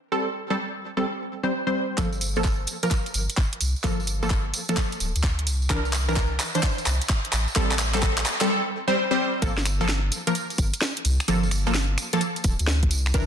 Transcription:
0.12 G3 C4 A4
0.50 G3 C4 A4
0.97 G3 C4 A4
1.43 G3 C4 C5
1.67 G3 C4 C5
1.98 G1 F3 A#3 A4, kick, clap, closed hi-hat, tambourine
2.12 tambourine
2.21 open hi-hat, tambourine
2.36 F3 A#3 A4, tambourine
2.44 kick, clap, tambourine
2.67 open hi-hat, tambourine
2.83 F3 A#3 A#4, closed hi-hat, tambourine
2.91 kick, clap, closed hi-hat, tambourine
3.06 closed hi-hat, tambourine
3.14 G1, open hi-hat, tambourine
3.29 closed hi-hat, tambourine
3.37 kick, clap, tambourine
3.53 closed hi-hat
3.61 C2, open hi-hat, tambourine
3.76 tambourine
3.84 G1 F3 A#3 A4, kick, clap, closed hi-hat, tambourine
4.00 tambourine
4.07 open hi-hat, tambourine
4.23 F3 A#3 A4, tambourine
4.30 kick, clap, tambourine
4.54 open hi-hat, tambourine
4.68 F3 A#3 A4, closed hi-hat, tambourine
4.77 kick, clap, closed hi-hat, tambourine
4.92 closed hi-hat, tambourine
5.00 D1, open hi-hat, tambourine
5.15 D2, closed hi-hat, tambourine
5.23 kick, clap, tambourine
5.39 closed hi-hat
5.47 C2, open hi-hat, tambourine
5.62 tambourine
5.70 C2 E3 D4 A#4, kick, clap, closed hi-hat, tambourine
5.85 tambourine
5.93 clap, open hi-hat, tambourine
6.08 E3 D4 A#4, tambourine
6.16 kick, clap, tambourine
6.39 clap, open hi-hat, tambourine
6.55 E3 D4 C5, closed hi-hat, tambourine
6.63 kick, clap, closed hi-hat, tambourine
6.78 closed hi-hat, tambourine
6.86 C2, clap, open hi-hat, tambourine
7.02 closed hi-hat, tambourine
7.09 kick, clap, tambourine
7.25 closed hi-hat
7.33 A1, clap, open hi-hat, tambourine
7.48 tambourine
7.56 A1 G3 C4 A4, kick, clap, closed hi-hat
7.71 clap, tambourine
7.79 clap, open hi-hat, tambourine
7.94 G3 C4 A4, clap, tambourine
8.02 kick, clap, tambourine
8.18 clap, tambourine
8.26 clap, open hi-hat, tambourine
8.41 G3 C4 A4, clap, closed hi-hat, tambourine
8.88 G3 C4 C5
9.11 G3 C4 C5
9.42 G1 F3 A#3 A4, kick, closed hi-hat, tambourine
9.58 snare, tambourine
9.65 finger snap, open hi-hat, tambourine
9.81 F3 A#3 A4, tambourine
9.89 snare, tambourine
10.12 open hi-hat, tambourine
10.27 F3 A#3 A#4, closed hi-hat, tambourine
10.35 closed hi-hat, tambourine
10.50 closed hi-hat, tambourine
10.58 G1, kick, open hi-hat, tambourine
10.74 closed hi-hat, tambourine
10.81 snare, tambourine
10.97 closed hi-hat
11.05 C2, open hi-hat, tambourine
11.20 finger snap, open hi-hat, tambourine
11.28 G1 F3 A#3 A4, closed hi-hat, tambourine
11.43 tambourine
11.51 finger snap, open hi-hat, tambourine
11.67 F3 A#3 A4, tambourine
11.75 snare, tambourine
11.98 finger snap, open hi-hat, tambourine
12.13 F3 A#3 A4, closed hi-hat, tambourine
12.21 closed hi-hat, tambourine
12.36 closed hi-hat, tambourine
12.44 D1, kick, open hi-hat, tambourine
12.59 D2, closed hi-hat, tambourine
12.67 snare, tambourine
12.83 kick, closed hi-hat
12.91 C2, open hi-hat, tambourine
13.06 finger snap, tambourine
13.14 C2 E3 D4 A#4, kick, closed hi-hat, tambourine

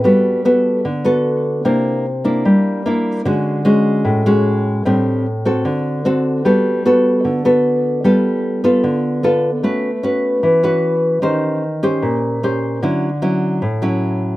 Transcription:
0.04 G3 B3 F#4 A4
0.45 B3 F#4 A4
0.85 D3
1.05 B3 F#4 A4
1.65 C3 A#3 D4 E4
2.24 A#3 D4 E4
2.45 G3
2.86 A#3 D4 E4
3.25 D3 G#3 C#4 F#4
3.65 G#3 C#4 F#4
4.05 A2
4.26 G#3 C#4 F#4
4.85 A2 G3 C4 D4
5.45 C4 F#4 A4
5.65 D3
6.05 C4 F#4 A4
6.45 G3 B3 F#4 A4
6.85 B3 F#4 A4
7.25 D3
7.45 B3 F#4 A4
8.04 G3 B3 F4 A4
8.64 B3 F4 A4
8.84 D3
9.23 B3 F4 A4
9.63 A3 C#4 F#4 B4
10.03 C#4 F#4 B4
10.43 E3
10.63 C#4 F#4 B4
11.22 D#3 C#4 G4 C5
11.83 C#4 G4 C5
12.02 A#2
12.43 C#4 G4 C5
12.83 D3 F#3 C#4 E4
13.22 F#3 C#4 E4
13.62 A2
13.82 F#3 C#4 E4

